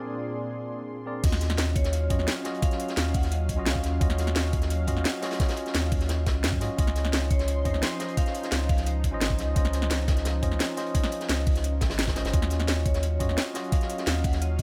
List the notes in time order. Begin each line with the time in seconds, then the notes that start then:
Already playing: A#2 C4 D4 F4 G#4 A#4 D5 C6
1.06 C4 G#4 A#4 D5
1.22 D#2 F#3 C#4 F4 F#4 D#5 F5, kick, closed hi-hat, crash
1.32 snare, closed hi-hat
1.41 snare, closed hi-hat
1.50 snare, closed hi-hat
1.58 D#2, snare, closed hi-hat
1.75 C#5, kick, closed hi-hat
1.84 snare, closed hi-hat
1.93 closed hi-hat
2.10 F#2 C#4 F4 F#4 D#5, kick, closed hi-hat
2.19 D#2, snare
2.28 D#5, snare, closed hi-hat
2.44 C#4 F4 F#4 D#5, snare, closed hi-hat
2.55 closed hi-hat
2.62 C#4 F4 F#4 D#5 F5, kick, closed hi-hat
2.71 snare, closed hi-hat
2.79 closed hi-hat
2.88 snare, closed hi-hat
2.97 D#2, snare, closed hi-hat
3.14 F#5, kick, closed hi-hat, open hi-hat
3.23 snare, closed hi-hat
3.32 D#5, closed hi-hat
3.49 kick, closed hi-hat
3.56 A#1 C#4 F4 F#4 D#5
3.66 C#2 F5, snare, closed hi-hat
3.75 kick
3.83 D#2, snare, closed hi-hat
4.00 D#2 C#4 F4 F#4 D#5, kick, closed hi-hat
4.10 snare, closed hi-hat
4.18 snare, closed hi-hat
4.27 snare, closed hi-hat
4.36 D#2, snare, closed hi-hat
4.53 kick, closed hi-hat
4.62 snare, closed hi-hat
4.70 closed hi-hat
4.87 F#2 C#4 F4 F#4 D#5, kick, closed hi-hat
4.97 D#2, snare
5.05 snare, closed hi-hat
5.22 C#4 F4 F#4 D#5, snare, closed hi-hat
5.31 snare, closed hi-hat
5.39 C#4 F4 F#4 D#5, kick, snare, closed hi-hat
5.49 snare, closed hi-hat
5.56 closed hi-hat
5.66 snare, closed hi-hat
5.74 D#2, snare, closed hi-hat
5.92 kick, closed hi-hat, open hi-hat
6.01 snare, closed hi-hat
6.09 snare, closed hi-hat
6.26 C#2, kick, snare, closed hi-hat
6.44 F#2, snare, closed hi-hat
6.53 kick
6.60 G#2 C#4 F4 F#4 D#5, snare, closed hi-hat
6.77 C#2 F3 C#4 D#4 F4 C#5 D#5 C6, kick, closed hi-hat
6.87 snare, closed hi-hat
6.95 snare, closed hi-hat
7.05 snare, closed hi-hat
7.13 C#2, snare, closed hi-hat
7.30 C#5, kick, closed hi-hat
7.39 snare, closed hi-hat
7.48 closed hi-hat
7.65 F2 C#4 F4 C5 D#5, kick, closed hi-hat
7.74 C#2, snare
7.82 D#5, snare, closed hi-hat
7.99 C#4 F4 C5 D#5, snare, closed hi-hat
8.08 closed hi-hat
8.17 C#4 F4 C5 D#5 F5, kick, closed hi-hat
8.26 snare, closed hi-hat
8.35 closed hi-hat
8.43 snare, closed hi-hat
8.52 C#2, snare, closed hi-hat
8.69 F5, kick, closed hi-hat, open hi-hat
8.78 snare, closed hi-hat
8.86 C5, closed hi-hat
9.04 kick, closed hi-hat
9.11 G#1 C#4 F4 C5 D#5
9.21 G#1 D#5, snare, closed hi-hat
9.30 kick
9.39 C#2, snare, closed hi-hat
9.55 C#2 C#4 F4 C5 D#5, kick, closed hi-hat
9.65 snare, closed hi-hat
9.73 snare, closed hi-hat
9.82 snare, closed hi-hat
9.90 C#2, snare, closed hi-hat
10.08 kick, snare, closed hi-hat
10.17 snare, closed hi-hat
10.25 snare, closed hi-hat
10.42 F2 C#4 F4 C5 D#5, kick, closed hi-hat
10.51 C#2, snare
10.60 snare, closed hi-hat
10.77 C#4 F4 C5 D#5, snare, closed hi-hat
10.86 closed hi-hat
10.94 C#4 F4 C5 D#5, kick, closed hi-hat
11.03 snare, closed hi-hat
11.12 closed hi-hat
11.20 snare, closed hi-hat
11.29 C#2, snare, closed hi-hat
11.47 kick, closed hi-hat, open hi-hat
11.56 snare, closed hi-hat
11.64 closed hi-hat
11.81 G#1, kick, snare, closed hi-hat
11.90 snare, closed hi-hat
11.98 snare, closed hi-hat
12.08 kick, snare, closed hi-hat
12.15 G#1 C#4 F4 C5 D#5, snare, closed hi-hat
12.25 G#1, snare, closed hi-hat
12.32 D#2 F#3 C#4 F4 F#4 D#5 F5, kick, closed hi-hat
12.42 snare, closed hi-hat
12.50 snare, closed hi-hat
12.60 snare, closed hi-hat
12.68 D#2, snare, closed hi-hat
12.86 C#5, kick, closed hi-hat
12.94 snare, closed hi-hat
13.03 closed hi-hat
13.19 F#2 C#4 F4 F#4 D#5, kick, closed hi-hat
13.29 D#2, snare
13.38 D#5, snare, closed hi-hat
13.54 C#4 F4 F#4 D#5, snare, closed hi-hat
13.64 closed hi-hat
13.72 C#4 F4 F#4 D#5 F5, kick, closed hi-hat
13.81 snare, closed hi-hat
13.90 closed hi-hat
13.98 snare, closed hi-hat
14.07 D#2, snare, closed hi-hat
14.24 F#5, kick, closed hi-hat, open hi-hat
14.33 snare, closed hi-hat
14.42 D#5, closed hi-hat
14.58 kick, closed hi-hat